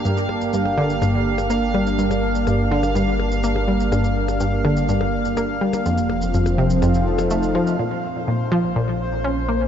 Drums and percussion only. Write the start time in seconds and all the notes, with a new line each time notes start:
0.05 shaker
0.17 shaker
0.29 percussion blips
0.41 shaker
0.53 shaker
0.65 percussion blips
0.90 shaker
1.02 percussion blips, shaker
1.38 percussion blips, shaker
1.50 shaker
1.74 percussion blips
1.87 shaker
1.99 shaker
2.11 percussion blips, shaker
2.35 shaker
2.47 percussion blips, shaker
2.83 percussion blips, shaker
2.95 shaker
3.20 percussion blips
3.32 shaker
3.44 shaker
3.56 percussion blips
3.80 shaker
3.92 percussion blips, shaker
4.04 shaker
4.28 percussion blips, shaker
4.40 shaker
4.65 percussion blips
4.77 shaker
4.89 shaker
5.01 percussion blips
5.25 shaker
5.37 percussion blips, shaker
5.73 percussion blips, shaker
5.86 shaker
5.98 shaker
6.10 percussion blips
6.22 shaker
6.34 shaker
6.46 percussion blips, shaker
6.70 shaker
6.82 percussion blips, shaker
6.94 shaker
7.18 percussion blips, shaker
7.31 shaker
7.43 shaker
7.55 percussion blips
7.67 shaker